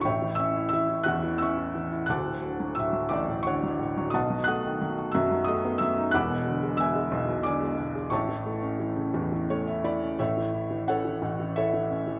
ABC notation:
X:1
M:3/4
L:1/16
Q:1/4=88
K:A
V:1 name="Felt piano"
[ce=gc']2 [ee']2 [ee']2 [ff']2 [ec'e']4 | [fad'f']4 [ee']2 [dd']2 [cfc']4 | [^dfa^d']2 [fd'f']4 [ee']2 [dd']2 [ee']2 | [fbd'f']4 [ege']4 [dgd']4 |
[ceac']8 c e [db]2 | [Ace]4 [Acf]4 [Ace]4 |]
V:2 name="Felt piano" clef=bass
[A,,,A,,] E, C E E, E [E,,E,] E, C E E, E | [D,,,D,,] A,, D, F, A,, F, [A,,,A,,] A,, D, F, A,, F, | [B,,,B,,] F, A, ^D, F, F [F,,F,] F, A, B, F, ^D | [E,,,E,,] B,, D, G, B,, G, [B,,,B,,] B,, D, G, B,, G, |
[A,,,A,,] E, A, C E, C, [E,,E,] E, A, E E, C | [A,,,A,,] E, E E, C E, [A,,,A,,] E, E E, C E, |]